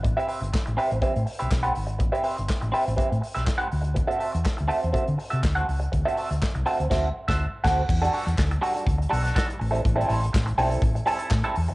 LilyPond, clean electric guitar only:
\new Staff \with { instrumentName = "Clean electric guitar" } { \time 4/4 \key a \dorian \tempo 4 = 122 r16 <c' g' b' e''>16 <c' g' b' e''>16 r8. <c' g' b' e''>8 <c' g' b' e''>8 r16 <c' g' b' e''>16 r16 <c' g' b' fis''>8 r16 | r16 <c' g' b' e''>16 <c' g' b' e''>16 r8. <c' g' b' e''>8 <c' g' b' e''>8 r16 <c' g' b' e''>16 r16 <c' g' b' fis''>8 r16 | r16 <c' fis' a' e''>16 <c' fis' a' e''>16 r8. <c' fis' a' e''>8 <c' fis' a' e''>8 r16 <c' fis' a' e''>16 r16 <c' fis' a' fis''>8 r16 | r16 <c' fis' a' e''>16 <c' fis' a' e''>16 r8. <c' fis' a' e''>8 <c' fis' a' e''>8 r16 <c' fis' a' e''>8 r16 <c' fis' a' fis''>8 |
r16 <g d' fis' a'>16 <g d' fis' a'>16 r8. <g d' fis' a'>16 <g d' fis' a'>16 r8 <g d' fis' a'>16 <g d' fis' a'>16 <g d' fis' a'>8 r16 <g c' e' a'>16 | r16 <g c' e' a'>16 <g c' e' a'>16 r8. <g c' e' a'>16 <g c' e' a'>16 r8 <g c' e' a'>16 <g c' e' a'>16 r16 <g c' e' a'>8 r16 | }